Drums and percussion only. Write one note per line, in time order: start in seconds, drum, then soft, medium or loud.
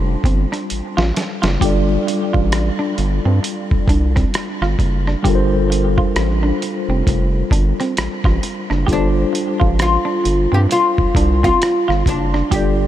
0.24 kick medium
0.24 closed hi-hat medium
0.53 cross-stick soft
0.53 closed hi-hat soft
0.70 closed hi-hat medium
0.98 snare medium
1.16 snare medium
1.16 closed hi-hat soft
1.43 snare medium
1.43 closed hi-hat soft
1.61 kick medium
1.61 closed hi-hat medium
2.08 closed hi-hat medium
2.34 kick medium
2.52 cross-stick loud
2.52 closed hi-hat medium
2.98 closed hi-hat medium
3.44 closed hi-hat medium
3.71 kick medium
3.88 kick medium
3.88 closed hi-hat medium
4.16 kick medium
4.16 cross-stick soft
4.16 closed hi-hat soft
4.34 cross-stick loud
4.34 closed hi-hat medium
4.62 cross-stick soft
4.79 kick medium
4.79 closed hi-hat soft
5.07 cross-stick soft
5.25 kick medium
5.25 closed hi-hat medium
5.72 closed hi-hat medium
5.98 kick medium
6.16 cross-stick loud
6.16 closed hi-hat medium
6.62 closed hi-hat medium
7.07 kick medium
7.07 closed hi-hat medium
7.51 kick medium
7.51 closed hi-hat medium
7.80 cross-stick soft
7.80 closed hi-hat soft
7.97 cross-stick loud
7.97 closed hi-hat medium
8.24 kick loud
8.24 cross-stick soft
8.43 closed hi-hat medium
8.71 cross-stick soft
8.88 kick loud
8.88 closed hi-hat medium
9.35 closed hi-hat medium
9.61 kick medium
9.79 cross-stick loud
9.79 closed hi-hat medium
10.25 closed hi-hat soft
10.71 closed hi-hat medium
10.98 kick medium
11.15 kick medium
11.15 closed hi-hat medium
11.44 kick medium
11.44 cross-stick soft
11.44 closed hi-hat soft
11.62 cross-stick loud
11.62 closed hi-hat medium
11.90 cross-stick soft
12.06 kick medium
12.06 closed hi-hat soft
12.34 cross-stick soft
12.52 kick loud
12.52 closed hi-hat medium